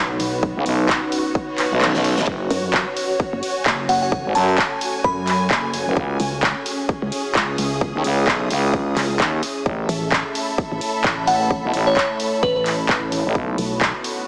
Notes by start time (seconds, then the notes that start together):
Already playing: B1 B3 C#4 D#4 F#4 B4 C#5
0.20 B1, open hi-hat
0.43 kick
0.56 C#2
0.66 B1, open hi-hat
0.89 B1, kick, clap
1.12 open hi-hat
1.35 kick, reverse cymbal
1.58 clap, open hi-hat
1.72 B1
1.81 clap, high tom
1.95 B1, snare
2.04 open hi-hat
2.18 B1, snare
2.27 F#1 C#4 F#4 A4, kick
2.50 F#2, open hi-hat
2.74 kick, clap
2.97 open hi-hat
3.20 kick
3.33 F#1
3.43 open hi-hat
3.52 G#5
3.66 F#1, kick, clap
3.89 F#1 F#5, open hi-hat
4.02 F#5
4.12 kick
4.25 G#1
4.35 F#2 A5, open hi-hat
4.49 A5
4.58 kick, clap
4.81 open hi-hat
5.04 F#2 B5, kick
5.27 clap, open hi-hat
5.51 F#1, kick, clap
5.74 open hi-hat
5.87 F#1
5.97 C#2 C#4 G#4 E5, kick
6.20 C#2, open hi-hat
6.40 G#4, kick, clap
6.66 open hi-hat
6.89 kick
7.02 C#2 D#6
7.12 open hi-hat
7.35 C#2, kick, clap
7.58 C#2, open hi-hat
7.81 kick
7.95 D#2
8.04 C#2, open hi-hat
8.27 B1, kick, clap
8.51 C#2, open hi-hat
8.74 kick
8.97 C#2, clap, open hi-hat
9.20 D#2, kick, clap
9.43 open hi-hat
9.66 A1 A3 E4 A4 C#5, kick
9.77 E5
9.89 A1, open hi-hat
10.12 kick, clap
10.17 B5
10.35 open hi-hat
10.58 kick
10.72 A1
10.81 open hi-hat
11.04 A1, kick, clap
11.27 A1 F#5, open hi-hat
11.41 F#5
11.51 kick
11.64 B1
11.74 A1, open hi-hat
11.87 C#5
11.97 kick, clap
12.20 open hi-hat
12.43 A1 B4, kick
12.56 B4
12.66 clap, open hi-hat
12.89 A1, kick, clap
13.12 open hi-hat
13.25 A1
13.35 B1 B3 C#4 D#4 B4, kick
13.54 B1 F#4, open hi-hat
13.81 kick, clap
14.04 open hi-hat